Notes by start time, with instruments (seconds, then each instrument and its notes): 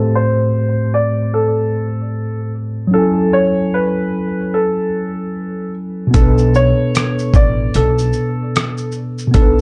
Already playing: tine electric piano A2 A3 C4 G4 C5, felt piano A4
0.15 felt piano C5
0.94 felt piano D5
1.34 felt piano A4
2.87 tine electric piano F#3 C#4
2.94 tine electric piano E4, felt piano A4
2.98 tine electric piano A4 G#5
3.33 felt piano C#5
3.74 felt piano B4
4.54 felt piano A4
6.07 tine electric piano B2 B3
6.14 upright bass B1, tine electric piano D4, felt piano A4, kick, closed hi-hat, shaker
6.18 tine electric piano A4 B4
6.38 shaker
6.54 felt piano C#5, shaker
6.95 cross-stick, closed hi-hat, shaker
7.19 shaker
7.34 upright bass A1, felt piano D5, kick, shaker
7.74 upright bass B1, felt piano A4, closed hi-hat, shaker
7.98 shaker
8.13 shaker
8.56 cross-stick, closed hi-hat, shaker
8.77 shaker
8.92 shaker
9.18 shaker
9.27 tine electric piano B2 B3
9.34 upright bass B1, tine electric piano D4, felt piano A4, kick, closed hi-hat, shaker
9.38 tine electric piano A4 B4